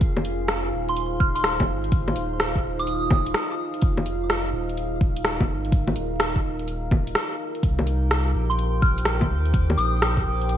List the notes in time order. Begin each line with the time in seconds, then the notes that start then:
Already playing: F4 G#4 F5
0.01 F1 D#4, kick, closed hi-hat
0.17 C5, low bongo
0.25 closed hi-hat
0.48 cross-stick, closed hi-hat
0.73 D#1
0.89 C6, closed hi-hat
0.96 closed hi-hat
1.20 F6, kick
1.35 C6, closed hi-hat
1.44 cross-stick, closed hi-hat
1.60 kick, low bongo
1.68 G#1
1.84 closed hi-hat
1.92 kick, closed hi-hat
2.08 low bongo
2.15 D#1, closed hi-hat
2.40 cross-stick, closed hi-hat
2.55 kick
2.64 D#1
2.79 D#6, closed hi-hat
2.87 closed hi-hat
3.10 kick, low bongo
3.26 closed hi-hat
3.34 cross-stick, closed hi-hat
3.74 closed hi-hat
3.82 F1, kick, closed hi-hat
3.97 low bongo
4.06 closed hi-hat
4.30 cross-stick, closed hi-hat
4.53 D#1
4.69 closed hi-hat
4.77 A#4, closed hi-hat
5.01 kick
5.17 closed hi-hat
5.25 cross-stick, closed hi-hat
5.40 kick, low bongo
5.49 G#1
5.65 closed hi-hat
5.72 kick, closed hi-hat
5.87 low bongo
5.96 D#1, closed hi-hat
6.20 cross-stick, closed hi-hat
6.36 kick
6.44 D#1
6.59 closed hi-hat
6.68 closed hi-hat
6.91 kick, low bongo
7.07 closed hi-hat
7.15 cross-stick, closed hi-hat
7.55 closed hi-hat
7.63 C2 G4 G5, kick, closed hi-hat
7.77 G4, low bongo
7.87 closed hi-hat
8.11 cross-stick, closed hi-hat
8.29 C5
8.35 A#1
8.50 C6, closed hi-hat
8.59 closed hi-hat
8.77 G5
8.82 F6, kick
8.98 closed hi-hat
9.05 cross-stick, closed hi-hat
9.21 kick, low bongo
9.29 D#2
9.45 closed hi-hat
9.54 kick, closed hi-hat
9.70 low bongo
9.77 A#1 D#6, closed hi-hat
10.02 cross-stick, closed hi-hat
10.17 kick
10.25 A#1
10.41 closed hi-hat
10.49 closed hi-hat